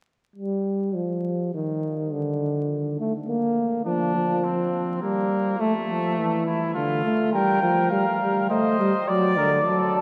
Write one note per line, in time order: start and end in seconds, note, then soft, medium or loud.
0.36 0.96 G3 medium
0.95 1.54 F3 medium
1.54 2.14 D#3 medium
2.12 2.99 D3 medium
3.00 3.13 A3 medium
3.29 3.85 A#3 medium
3.86 4.14 F3 medium
3.86 4.46 D4 medium
4.15 5.00 F3 medium
4.44 5.01 C4 medium
5.02 5.59 G3 medium
5.02 5.61 A#3 medium
5.60 6.45 A3 medium
5.60 5.73 A3 medium
5.90 6.19 F3 medium
6.18 6.75 E3 medium
6.46 6.74 E4 medium
6.74 7.04 D3 medium
6.74 7.32 F4 medium
7.05 7.33 A3 medium
7.33 7.62 G3 medium
7.33 7.62 A#4 medium
7.33 7.88 G5 medium
7.62 7.91 F3 medium
7.62 8.48 A#4 medium
7.90 8.05 G3 medium
7.90 8.48 F5 medium
8.20 8.49 G3 medium
8.50 8.78 A3 medium
8.50 9.10 C5 medium
8.50 9.07 D#5 medium
8.80 8.93 G3 medium
9.08 9.39 F#3 medium
9.08 9.36 D5 medium
9.08 9.94 D5 loud
9.37 9.68 D3 medium
9.37 9.50 A#4 medium
9.66 10.01 F#3 medium
9.66 10.01 A4 medium
9.96 10.01 A5 medium